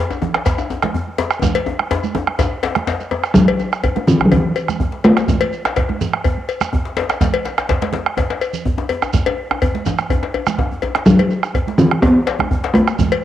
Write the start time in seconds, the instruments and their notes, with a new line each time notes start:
0.10 djembe tone, shekere
0.22 djembe slap, djembe tone, high conga, low conga
0.34 bombo rim, djembe slap
0.46 bombo rim, bombo low, cowbell, djembe slap, high conga, djembe bass, shekere
0.58 djembe tone, shekere
0.70 djembe tone, shekere
0.82 bombo rim, djembe slap, high conga, low conga
0.94 high conga, djembe bass
1.08 high conga
1.18 cowbell, djembe slap, djembe tone
1.31 bombo rim, shekere
1.42 bombo low, djembe slap, djembe tone, high conga, djembe bass, low conga, shekere
1.55 cowbell, djembe slap
1.66 djembe tone, high conga
1.79 bombo rim, high conga
1.91 bombo rim, cowbell, djembe slap, djembe tone, high conga, djembe bass
2.03 high conga, shekere
2.15 bombo rim, high conga, djembe tone, low conga
2.27 bombo rim, high conga
2.39 bombo low, cowbell, djembe slap, djembe tone, high conga, djembe bass, shekere
2.52 djembe slap
2.63 cowbell, djembe slap, djembe tone
2.75 bombo rim, djembe slap, high conga, low conga
2.87 djembe slap, high conga, djembe bass, shekere
3.00 high conga, shekere
3.11 cowbell, djembe slap, djembe tone, high conga
3.24 bombo rim, shekere
3.34 talking drum F#3, bombo low, high conga, djembe bass, low conga, shekere
3.48 cowbell, djembe bass
3.59 djembe slap, djembe tone, high conga, shekere
3.72 bombo rim, shekere
3.83 bombo rim, bombo low, cowbell, djembe slap, djembe bass
3.96 djembe slap, djembe tone, high conga
4.07 talking drum E3, djembe tone, shekere
4.20 bombo rim, high conga, djembe bass
4.25 talking drum F#3
4.31 talking drum E3, bombo low, cowbell, djembe tone, djembe bass
4.45 high conga
4.56 cowbell, shekere
4.68 bombo rim, high conga, low conga, shekere
4.80 bombo low, djembe bass
4.92 djembe slap
5.04 talking drum A3, cowbell, djembe slap
5.17 bombo rim, djembe slap, shekere
5.28 bombo low, djembe tone, high conga, djembe bass, low conga, shekere
5.41 cowbell
5.53 djembe slap, high conga, shekere
5.65 bombo rim, djembe slap, shekere
5.76 bombo rim, bombo low, cowbell, djembe slap, djembe bass
5.89 djembe tone, high conga
6.01 djembe tone, low conga, shekere
6.13 bombo rim, high conga
6.24 bombo low, cowbell, high conga, djembe bass
6.37 high conga
6.49 cowbell, shekere
6.61 bombo rim, djembe slap, high conga, low conga, shekere
6.73 bombo low, djembe bass
6.85 djembe slap
6.97 cowbell, djembe slap, djembe tone
7.09 bombo rim, djembe slap, shekere
7.21 bombo low, djembe slap, high conga, low conga, djembe bass, shekere
7.34 cowbell
7.45 djembe slap, high conga, shekere
7.58 bombo rim, djembe slap, shekere
7.69 bombo rim, bombo low, cowbell, djembe slap, djembe bass
7.82 djembe slap, high conga
7.93 djembe slap, djembe tone, low conga
8.06 bombo rim
8.17 bombo low, cowbell, djembe slap, high conga, djembe bass
8.30 djembe slap, high conga
8.41 cowbell, shekere
8.53 djembe slap, low conga, shekere
8.66 bombo low, djembe bass
8.78 djembe slap, djembe tone
8.89 cowbell, djembe tone
9.02 bombo rim, djembe tone, shekere
9.13 bombo rim, bombo low, djembe slap, high conga, low conga, djembe bass, shekere
9.26 cowbell, djembe tone, high conga
9.38 djembe slap
9.51 bombo rim, djembe tone
9.62 bombo low, cowbell, djembe bass
9.75 djembe slap, high conga
9.86 bombo rim, djembe slap, djembe tone, low conga, shekere
9.98 bombo rim, high conga, shekere
10.10 bombo low, cowbell, djembe bass
10.23 bombo rim, djembe slap
10.34 cowbell, djembe tone
10.47 bombo rim, high conga, low conga, djembe bass, shekere
10.58 bombo low, djembe tone, high conga, djembe bass
10.71 high conga, djembe bass
10.82 cowbell, djembe slap, high conga, djembe bass
10.95 bombo rim, djembe slap, high conga
11.06 talking drum F#3, bombo low, high conga, djembe tone, low conga, djembe bass, shekere
11.19 cowbell
11.30 djembe slap, high conga, shekere
11.43 bombo rim, djembe slap, shekere
11.54 bombo rim, bombo low, cowbell, djembe slap, djembe bass
11.67 djembe slap, high conga
11.78 talking drum E3, djembe tone, low conga, shekere
11.91 bombo rim, high conga
12.02 talking drum B3, bombo low, cowbell, high conga, djembe bass
12.15 high conga
12.27 cowbell, djembe slap, shekere
12.39 bombo rim, high conga, low conga, djembe bass
12.51 bombo low, djembe bass
12.64 djembe slap
12.74 talking drum A3, cowbell, djembe tone, djembe bass
12.88 bombo rim, shekere
12.99 bombo low, high conga, low conga, djembe bass, shekere
13.12 cowbell